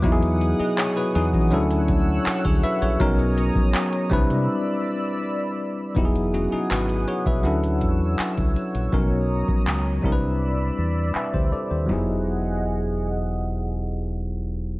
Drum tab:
CC |----------------|----------------|----------------|----------------|
HH |xxx-xxxxxxx--xxx|xxx-xxxx--------|xxx-xxxxxxx--xxx|----------------|
CP |----x-------x---|----x-----------|----x-------x---|----x-------x---|
SD |----------------|----------------|----------------|----------------|
FT |----------------|----------------|----------------|----------------|
BD |o------o--o--o--|o--o--o---------|o------o--o--o--|o--o--o------o--|

CC |x---------------|
HH |----------------|
CP |----------------|
SD |o---------------|
FT |o---------------|
BD |----------------|